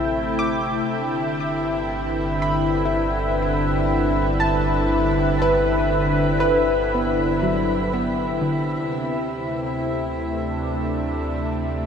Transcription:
Already playing: analog synth bass A1, analog synth pad C3 A3 E4 G5, harmonium C3 E4, synth pluck D3
0.39 synth pluck D6
0.88 analog synth bass G1, analog synth pad D3
1.59 analog synth pad B4
2.42 synth pluck B5
2.85 synth pluck E4
4.40 synth pluck A5
5.42 synth pluck B4
6.40 synth pluck B4
6.94 synth pluck B3
7.42 synth pluck F#3
7.93 synth pluck B3
8.41 synth pluck D3
8.82 analog synth bass D2, analog synth pad C3
9.42 analog synth pad A3
10.36 analog synth pad D4

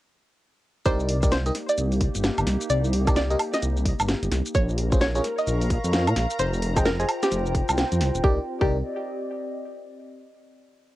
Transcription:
0.85 detuned saw bass C2, ambient pad A#3, fm electric piano D#4 G4 A#4 D5, synth pluck C5, kick, closed hi-hat, shaker
0.97 ambient pad G4, shaker
1.08 ambient pad D#4, open hi-hat
1.23 fm electric piano D#4 G4 A#4 D5, kick, closed hi-hat, shaker
1.32 synth pluck C5, snare, shaker
1.46 fm electric piano D#4 G4 A#4 D#5, closed hi-hat, shaker
1.55 snare, open hi-hat
1.69 synth pluck D5, closed hi-hat, shaker
1.78 detuned saw bass C2, closed hi-hat, shaker
1.92 open hi-hat, shaker
2.01 kick, open hi-hat
2.15 detuned saw bass G1, closed hi-hat, shaker
2.24 snare, shaker
2.38 detuned saw bass G1, closed hi-hat, high woodblock, shaker
2.47 detuned saw bass C2, snare, open hi-hat
2.61 closed hi-hat, shaker
2.70 detuned saw bass C2, synth pluck D5, closed hi-hat, shaker
2.84 shaker
2.93 open hi-hat
3.07 fm electric piano D#4 G4 A#4 D5, kick, closed hi-hat, high woodblock, shaker
3.16 synth pluck D5, snare, shaker
3.30 fm electric piano D#4 G4 A#4 D#5, closed hi-hat, shaker
3.39 open hi-hat, high woodblock
3.54 synth pluck D#5, snare, closed hi-hat, shaker
3.62 detuned saw bass C2, closed hi-hat, shaker
3.77 shaker
3.86 kick, open hi-hat
4.00 detuned saw bass G1, closed hi-hat, high woodblock, shaker
4.09 snare, shaker
4.23 detuned saw bass G1, closed hi-hat, shaker
4.32 detuned saw bass C2, snare, open hi-hat
4.46 closed hi-hat, shaker
4.54 detuned saw bass A#1, ambient pad A#4, synth pluck C#5, string machine A#5, kick, closed hi-hat, shaker
4.69 shaker
4.78 open hi-hat
4.92 fm electric piano C#4 F4 G#4 C5, kick, closed hi-hat, shaker
5.01 synth pluck C#5, snare, shaker
5.13 fm electric piano C#4 F4 G#4 C#5, ambient pad F5 C#6, closed hi-hat, shaker
5.24 snare, open hi-hat
5.38 synth pluck D#5, closed hi-hat, shaker
5.47 detuned saw bass A#1, closed hi-hat, shaker
5.61 open hi-hat, shaker
5.70 kick, open hi-hat
5.84 detuned saw bass F2, closed hi-hat, shaker
5.93 snare, shaker
6.07 detuned saw bass A#2, closed hi-hat, high woodblock, shaker
6.16 detuned saw bass A#1, snare, open hi-hat
6.31 closed hi-hat, shaker
6.39 detuned saw bass F1, ambient pad F4, synth pluck C5, closed hi-hat, shaker
6.53 ambient pad C5, shaker
6.62 open hi-hat
6.71 ambient pad G5
6.77 fm electric piano G#4 C5 D#5 G5, kick, closed hi-hat, high woodblock, shaker
6.85 synth pluck A#4, snare, shaker
7.00 fm electric piano G#4 C5 D#5 G#5, closed hi-hat, shaker
7.09 open hi-hat, high woodblock
7.23 synth pluck G4, snare, closed hi-hat, shaker
7.32 detuned saw bass F1, closed hi-hat, shaker
7.46 shaker
7.55 kick, open hi-hat
7.69 detuned saw bass C2, closed hi-hat, high woodblock, shaker
7.78 snare, shaker
7.92 detuned saw bass F2, closed hi-hat, shaker
8.01 detuned saw bass C2, snare, open hi-hat
8.15 detuned saw bass D#1, closed hi-hat, shaker
8.24 detuned saw bass C2, ambient pad C4, fm electric piano D#4 G4 A#4 D5, synth pluck G4, kick
8.33 ambient pad G4
8.40 ambient pad D5
8.46 ambient pad D#5
8.61 detuned saw bass C2, fm electric piano D#4 G4 A#4 D5, synth pluck G4, kick

